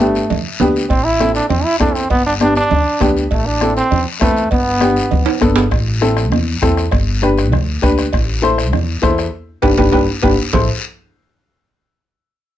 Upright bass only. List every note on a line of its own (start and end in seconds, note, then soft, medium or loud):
0.00 0.18 G1 medium
0.30 0.42 D2 medium
0.60 0.84 D2 loud
0.90 1.38 A1 medium
1.50 1.62 E2 loud
1.81 2.05 E2 loud
2.11 2.59 G1 medium
2.71 2.83 D2 medium
3.01 3.25 D2 loud
3.32 3.80 A1 medium
3.92 4.03 E2 medium
4.22 4.46 E2 loud
4.52 5.00 G1 medium
5.12 5.24 D2 medium
5.42 5.66 G1 loud
5.72 6.32 A1 medium
6.32 6.56 E2 loud
6.63 6.87 E2 loud
6.93 7.53 G1 medium
7.53 7.77 D2 medium
7.83 8.07 D2 loud
8.14 8.73 A1 medium
8.73 8.97 E2 loud
9.03 9.27 E2 loud
9.64 9.75 G1 loud
9.79 9.90 G1 loud
9.94 10.05 G1 medium
10.24 10.35 G1 loud
10.54 10.68 A1 medium